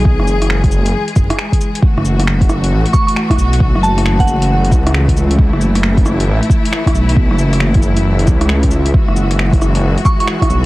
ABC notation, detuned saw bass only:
X:1
M:4/4
L:1/16
Q:"Swing 16ths" 1/4=135
K:F#m
V:1 name="Detuned saw bass" clef=bass
B,,, F,,,6- F,,, z2 F,,, z4 z | z F,,,6- F,,, A,,, z4 z B,,,2- | B,,, F,,,8- F,,, C,,6- | C,, F,,,6- F,,, A,,, z4 z B,,,2- |
B,,, F,,,8- F,,, C,,6 | z F,,,6- F,,, F,,, z4 z B,,,2 |]